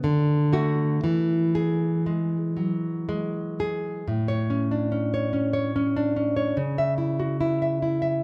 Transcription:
0.04 1.00 D3 medium
0.53 1.00 A3 medium
0.53 1.00 F#4 medium
1.04 4.03 E3 medium
1.55 2.36 G#4 medium
2.06 3.07 G#3 medium
2.57 4.06 F#3 soft
3.09 4.07 G#3 medium
3.60 4.07 G#4 medium
4.08 6.53 A2 medium
4.28 4.62 C#5 medium
4.50 4.91 C#4 soft
4.71 5.95 D4 soft
4.92 5.32 C#4 medium
5.14 5.52 C#5 medium
5.33 5.75 C#4 medium
5.53 6.35 C#5 medium
5.76 6.15 C#4 medium
5.96 6.57 D4 medium
6.16 6.57 C#4 soft
6.37 6.56 C#5 medium
6.57 8.23 C#3 medium
6.78 6.98 E5 medium
6.98 7.39 E4 soft
7.20 8.23 F#4 soft
7.41 7.81 E4 soft
7.62 8.01 E5 medium
7.82 8.23 E4 soft
8.02 8.23 E5 medium

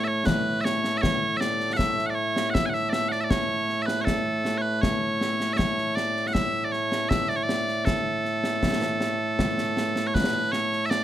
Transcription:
0.00 11.04 A2 medium
0.00 11.04 A3 medium
0.04 0.26 C#5 medium
0.04 0.08 E5 medium
0.26 0.61 B4 medium
0.26 concert bass drum medium
0.26 snare loud
0.61 0.98 C#5 loud
0.61 0.65 E5 loud
0.65 snare medium
0.84 snare medium
0.98 1.37 C#5 loud
0.98 1.01 E5 loud
1.03 concert bass drum medium
1.03 snare medium
1.37 1.73 D5 loud
1.37 1.40 E5 loud
1.37 snare medium
1.60 snare soft
1.73 2.06 E5 loud
1.73 1.77 F#5 loud
1.79 concert bass drum medium
1.79 snare medium
1.98 snare soft
2.06 2.15 D5 medium
2.06 2.10 F#5 medium
2.15 2.50 C#5 medium
2.36 snare medium
2.50 2.66 E5 medium
2.50 2.54 F#5 medium
2.55 concert bass drum medium
2.55 snare medium
2.66 2.74 F#5 medium
2.66 2.70 G#5 medium
2.74 2.89 E5 loud
2.74 snare soft
2.89 2.93 D5 medium
2.89 3.08 E5 loud
2.89 snare medium
3.08 3.20 D5 medium
3.08 3.12 F#5 medium
3.08 snare soft
3.20 3.30 D5 medium
3.20 3.24 E5 medium
3.30 3.82 C#5 loud
3.30 concert bass drum medium
3.30 snare loud
3.69 snare soft
3.82 4.01 B4 medium
3.82 3.86 E5 medium
3.88 snare medium
4.01 4.58 A4 medium
4.01 4.05 C#5 medium
4.07 concert bass drum soft
4.07 snare medium
4.45 snare medium
4.58 4.81 B4 medium
4.58 4.62 C#5 medium
4.81 5.53 C#5 medium
4.81 concert bass drum medium
4.81 snare medium
5.21 snare medium
5.40 snare medium
5.53 5.95 C#5 loud
5.53 5.57 E5 loud
5.59 concert bass drum medium
5.59 snare medium
5.78 snare soft
5.95 6.27 D5 medium
5.95 snare medium
6.16 snare soft
6.27 6.33 F#5 medium
6.33 6.64 E5 loud
6.33 concert bass drum medium
6.33 snare medium
6.64 6.72 D5 medium
6.72 7.09 C#5 medium
6.72 snare soft
6.92 snare medium
7.09 7.29 E5 medium
7.09 concert bass drum medium
7.09 snare medium
7.29 7.36 D5 loud
7.29 snare soft
7.36 7.43 C#5 medium
7.43 7.85 D5 loud
7.49 snare medium
7.68 snare soft
7.85 10.07 A4 medium
7.85 concert bass drum medium
7.85 snare medium
8.25 snare soft
8.44 snare medium
8.63 concert bass drum medium
8.63 snare medium
8.82 snare medium
9.01 snare medium
9.39 concert bass drum medium
9.39 snare medium
9.58 snare medium
9.77 snare medium
9.96 snare medium
10.07 10.14 C#5 medium
10.14 10.52 B4 loud
10.14 concert bass drum medium
10.14 snare medium
10.52 10.86 C#5 loud
10.52 snare medium
10.72 snare soft
10.86 10.90 E5 loud
10.90 11.04 D5 loud
10.90 snare loud

